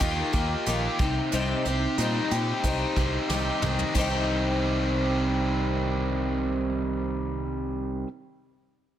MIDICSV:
0, 0, Header, 1, 5, 480
1, 0, Start_track
1, 0, Key_signature, -3, "minor"
1, 0, Tempo, 656455
1, 968, Time_signature, 4, 2, 24, 8
1, 6572, End_track
2, 0, Start_track
2, 0, Title_t, "Twelve-string acoustic guitar"
2, 0, Program_c, 0, 25
2, 0, Note_on_c, 0, 51, 80
2, 5, Note_on_c, 0, 58, 82
2, 12, Note_on_c, 0, 65, 89
2, 16, Note_on_c, 0, 67, 93
2, 231, Note_off_c, 0, 67, 0
2, 240, Note_on_c, 0, 67, 55
2, 242, Note_off_c, 0, 65, 0
2, 244, Note_off_c, 0, 51, 0
2, 247, Note_off_c, 0, 58, 0
2, 250, Note_on_c, 0, 65, 47
2, 262, Note_on_c, 0, 58, 39
2, 484, Note_off_c, 0, 58, 0
2, 484, Note_off_c, 0, 67, 0
2, 485, Note_on_c, 0, 51, 60
2, 489, Note_off_c, 0, 65, 0
2, 492, Note_on_c, 0, 58, 65
2, 503, Note_on_c, 0, 65, 68
2, 510, Note_on_c, 0, 67, 62
2, 716, Note_off_c, 0, 67, 0
2, 724, Note_on_c, 0, 67, 53
2, 726, Note_off_c, 0, 51, 0
2, 730, Note_off_c, 0, 58, 0
2, 735, Note_off_c, 0, 65, 0
2, 739, Note_on_c, 0, 63, 53
2, 747, Note_on_c, 0, 60, 41
2, 966, Note_off_c, 0, 67, 0
2, 967, Note_on_c, 0, 48, 71
2, 969, Note_off_c, 0, 60, 0
2, 971, Note_off_c, 0, 63, 0
2, 971, Note_on_c, 0, 55, 73
2, 977, Note_on_c, 0, 60, 82
2, 980, Note_on_c, 0, 63, 76
2, 987, Note_on_c, 0, 67, 79
2, 1199, Note_off_c, 0, 67, 0
2, 1208, Note_off_c, 0, 48, 0
2, 1208, Note_on_c, 0, 67, 53
2, 1210, Note_off_c, 0, 55, 0
2, 1211, Note_off_c, 0, 63, 0
2, 1213, Note_off_c, 0, 60, 0
2, 1220, Note_on_c, 0, 63, 49
2, 1232, Note_on_c, 0, 60, 43
2, 1448, Note_off_c, 0, 67, 0
2, 1454, Note_off_c, 0, 63, 0
2, 1455, Note_on_c, 0, 55, 56
2, 1458, Note_off_c, 0, 60, 0
2, 1467, Note_on_c, 0, 60, 66
2, 1473, Note_on_c, 0, 63, 62
2, 1477, Note_on_c, 0, 67, 66
2, 1682, Note_off_c, 0, 67, 0
2, 1691, Note_off_c, 0, 55, 0
2, 1691, Note_on_c, 0, 67, 55
2, 1695, Note_off_c, 0, 63, 0
2, 1697, Note_off_c, 0, 60, 0
2, 1704, Note_on_c, 0, 63, 48
2, 1717, Note_on_c, 0, 60, 46
2, 1929, Note_off_c, 0, 67, 0
2, 1932, Note_off_c, 0, 60, 0
2, 1934, Note_on_c, 0, 48, 85
2, 1936, Note_off_c, 0, 63, 0
2, 1939, Note_on_c, 0, 55, 78
2, 1941, Note_on_c, 0, 60, 81
2, 1950, Note_on_c, 0, 67, 84
2, 1951, Note_on_c, 0, 63, 87
2, 2165, Note_off_c, 0, 67, 0
2, 2171, Note_off_c, 0, 48, 0
2, 2173, Note_off_c, 0, 55, 0
2, 2174, Note_off_c, 0, 60, 0
2, 2174, Note_on_c, 0, 67, 53
2, 2177, Note_off_c, 0, 63, 0
2, 2185, Note_on_c, 0, 63, 44
2, 2200, Note_on_c, 0, 60, 40
2, 2407, Note_off_c, 0, 60, 0
2, 2411, Note_off_c, 0, 67, 0
2, 2412, Note_on_c, 0, 55, 54
2, 2416, Note_on_c, 0, 60, 54
2, 2417, Note_off_c, 0, 63, 0
2, 2429, Note_on_c, 0, 63, 65
2, 2435, Note_on_c, 0, 67, 67
2, 2644, Note_off_c, 0, 67, 0
2, 2650, Note_off_c, 0, 55, 0
2, 2652, Note_off_c, 0, 60, 0
2, 2652, Note_on_c, 0, 67, 51
2, 2658, Note_off_c, 0, 63, 0
2, 2666, Note_on_c, 0, 63, 48
2, 2678, Note_on_c, 0, 60, 40
2, 2886, Note_on_c, 0, 48, 66
2, 2890, Note_off_c, 0, 67, 0
2, 2897, Note_off_c, 0, 63, 0
2, 2898, Note_on_c, 0, 51, 75
2, 2901, Note_off_c, 0, 60, 0
2, 2909, Note_on_c, 0, 60, 73
2, 2919, Note_on_c, 0, 63, 80
2, 2931, Note_on_c, 0, 67, 84
2, 5902, Note_off_c, 0, 48, 0
2, 5908, Note_off_c, 0, 51, 0
2, 5914, Note_off_c, 0, 60, 0
2, 5919, Note_off_c, 0, 63, 0
2, 5925, Note_off_c, 0, 67, 0
2, 6572, End_track
3, 0, Start_track
3, 0, Title_t, "Overdriven electric guitar"
3, 0, Program_c, 1, 29
3, 0, Note_on_c, 1, 51, 69
3, 0, Note_on_c, 1, 67, 69
3, 12, Note_on_c, 1, 63, 58
3, 249, Note_off_c, 1, 51, 0
3, 483, Note_off_c, 1, 67, 0
3, 727, Note_on_c, 1, 48, 61
3, 959, Note_off_c, 1, 48, 0
3, 1444, Note_off_c, 1, 63, 0
3, 2170, Note_on_c, 1, 60, 61
3, 2889, Note_off_c, 1, 60, 0
3, 2895, Note_on_c, 1, 55, 81
3, 5907, Note_off_c, 1, 55, 0
3, 6572, End_track
4, 0, Start_track
4, 0, Title_t, "Fingered electric bass"
4, 0, Program_c, 2, 33
4, 6, Note_on_c, 2, 39, 75
4, 154, Note_off_c, 2, 39, 0
4, 246, Note_on_c, 2, 39, 77
4, 394, Note_off_c, 2, 39, 0
4, 488, Note_on_c, 2, 34, 70
4, 635, Note_off_c, 2, 34, 0
4, 726, Note_on_c, 2, 36, 78
4, 874, Note_off_c, 2, 36, 0
4, 972, Note_on_c, 2, 36, 89
4, 1118, Note_off_c, 2, 36, 0
4, 1210, Note_on_c, 2, 36, 78
4, 1357, Note_off_c, 2, 36, 0
4, 1448, Note_on_c, 2, 46, 85
4, 1595, Note_off_c, 2, 46, 0
4, 1691, Note_on_c, 2, 46, 76
4, 1837, Note_off_c, 2, 46, 0
4, 1930, Note_on_c, 2, 36, 69
4, 2076, Note_off_c, 2, 36, 0
4, 2170, Note_on_c, 2, 36, 75
4, 2317, Note_off_c, 2, 36, 0
4, 2407, Note_on_c, 2, 36, 72
4, 2554, Note_off_c, 2, 36, 0
4, 2649, Note_on_c, 2, 36, 75
4, 2796, Note_off_c, 2, 36, 0
4, 2888, Note_on_c, 2, 36, 88
4, 5874, Note_off_c, 2, 36, 0
4, 6572, End_track
5, 0, Start_track
5, 0, Title_t, "Drums"
5, 3, Note_on_c, 9, 42, 70
5, 5, Note_on_c, 9, 36, 67
5, 76, Note_off_c, 9, 42, 0
5, 78, Note_off_c, 9, 36, 0
5, 242, Note_on_c, 9, 42, 55
5, 245, Note_on_c, 9, 36, 77
5, 315, Note_off_c, 9, 42, 0
5, 319, Note_off_c, 9, 36, 0
5, 484, Note_on_c, 9, 42, 76
5, 558, Note_off_c, 9, 42, 0
5, 725, Note_on_c, 9, 42, 53
5, 726, Note_on_c, 9, 36, 95
5, 798, Note_off_c, 9, 42, 0
5, 799, Note_off_c, 9, 36, 0
5, 963, Note_on_c, 9, 42, 69
5, 1036, Note_off_c, 9, 42, 0
5, 1208, Note_on_c, 9, 42, 52
5, 1281, Note_off_c, 9, 42, 0
5, 1447, Note_on_c, 9, 42, 72
5, 1520, Note_off_c, 9, 42, 0
5, 1690, Note_on_c, 9, 42, 53
5, 1763, Note_off_c, 9, 42, 0
5, 1926, Note_on_c, 9, 42, 66
5, 1928, Note_on_c, 9, 36, 64
5, 1999, Note_off_c, 9, 42, 0
5, 2002, Note_off_c, 9, 36, 0
5, 2165, Note_on_c, 9, 42, 52
5, 2167, Note_on_c, 9, 36, 74
5, 2238, Note_off_c, 9, 42, 0
5, 2241, Note_off_c, 9, 36, 0
5, 2410, Note_on_c, 9, 38, 51
5, 2483, Note_off_c, 9, 38, 0
5, 2648, Note_on_c, 9, 45, 75
5, 2721, Note_off_c, 9, 45, 0
5, 2769, Note_on_c, 9, 43, 74
5, 2842, Note_off_c, 9, 43, 0
5, 2887, Note_on_c, 9, 36, 61
5, 2888, Note_on_c, 9, 51, 71
5, 2960, Note_off_c, 9, 36, 0
5, 2961, Note_off_c, 9, 51, 0
5, 6572, End_track
0, 0, End_of_file